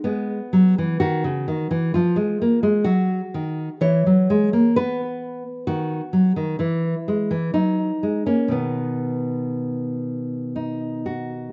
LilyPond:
\new Staff \with { instrumentName = "Nylon-string guitar" } { \clef bass \time 3/4 \key b \major \tempo 4 = 63 << { b4 fis'4 f'4 | fis'4 cis''4 b'4 | fis'4 e'4 dis'8. cis'16 | b2 dis'8 fis'8 | } \\ { gis8 fis16 e16 dis16 cis16 dis16 e16 f16 aes16 bes16 aes16 | fis8 dis8 e16 fis16 gis16 ais16 b4 | dis8 fis16 dis16 e8 gis16 e16 fis8 gis16 ais16 | <b, dis>2. | } >> }